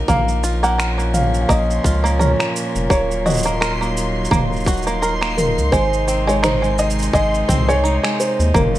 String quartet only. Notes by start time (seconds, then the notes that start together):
Already playing: D#4 A#4
0.09 A#2
0.25 F3
0.42 C#4
2.99 F#3
3.65 D#4
5.72 C3
6.02 G#3
8.55 C#3
8.61 F#3